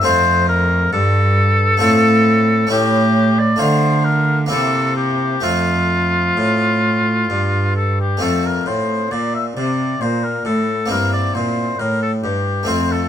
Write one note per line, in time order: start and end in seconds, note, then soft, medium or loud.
0.02 0.89 A3 medium
0.02 0.89 C4 medium
0.02 1.77 F4 medium
0.02 0.48 C5 loud
0.06 0.92 F2 medium
0.06 0.90 F2 medium
0.49 0.92 A#4 loud
0.93 1.78 G2 medium
0.93 1.80 G2 medium
0.93 2.67 A4 loud
1.77 2.66 A3 medium
1.77 2.67 C4 medium
1.77 2.68 F4 medium
1.82 2.67 A2 medium
1.82 2.69 A2 medium
2.67 3.59 A2 medium
2.67 3.55 A3 medium
2.67 3.57 C#4 medium
2.67 3.58 E4 medium
2.71 3.57 A2 medium
2.71 3.40 G4 medium
3.39 3.61 D5 medium
3.56 4.47 A3 medium
3.56 4.48 F4 medium
3.56 4.06 C5 medium
3.61 4.48 D3 medium
3.61 4.50 D3 medium
4.05 4.38 A#4 medium
4.46 5.39 A#3 medium
4.46 5.40 C4 medium
4.46 5.41 E4 medium
4.51 5.40 C3 medium
4.51 5.43 C3 medium
4.51 4.96 A4 medium
4.96 5.45 G4 medium
5.41 7.24 A3 soft
5.41 7.24 C4 soft
5.41 8.17 F4 soft
5.41 7.76 F4 medium
5.45 6.34 F2 soft
5.45 6.36 F2 medium
6.37 7.26 A2 medium
6.37 7.28 A2 medium
7.30 8.18 G2 medium
7.30 8.20 G2 medium
7.76 7.98 A4 medium
8.01 8.24 G4 medium
8.17 9.06 A3 soft
8.17 9.07 C4 soft
8.17 10.85 F4 soft
8.22 8.63 F2 soft
8.22 8.47 A4 medium
8.46 8.69 A#4 medium
8.66 9.10 A2 soft
8.66 9.07 A2 soft
8.66 9.13 C5 medium
9.11 9.55 A#2 medium
9.11 9.52 A#2 soft
9.11 9.34 D5 medium
9.35 9.45 E5 medium
9.56 10.00 C3 soft
9.56 9.97 C3 soft
9.56 10.02 D5 medium
10.01 10.45 A#2 medium
10.01 10.42 A#2 soft
10.01 10.26 C5 medium
10.24 10.45 A#4 medium
10.45 10.86 A2 soft
10.45 10.89 A2 soft
10.45 10.89 A4 medium
10.86 11.74 A#3 soft
10.86 11.75 C4 soft
10.86 12.63 E4 soft
10.90 11.34 G2 medium
10.90 11.31 G2 soft
10.90 11.12 A#4 medium
11.13 11.36 D5 medium
11.34 11.78 A#2 medium
11.34 11.75 A#2 soft
11.34 11.81 C5 medium
11.78 12.22 A2 medium
11.78 12.20 A2 soft
11.78 12.01 A#4 medium
12.02 12.12 A4 medium
12.23 12.66 G2 medium
12.23 12.64 G2 soft
12.23 12.67 G4 medium
12.63 13.09 A3 soft
12.63 13.09 C4 soft
12.63 13.09 F4 soft
12.68 13.09 F2 medium
12.68 13.08 F2 soft
12.68 12.93 C5 medium
12.92 13.09 A4 medium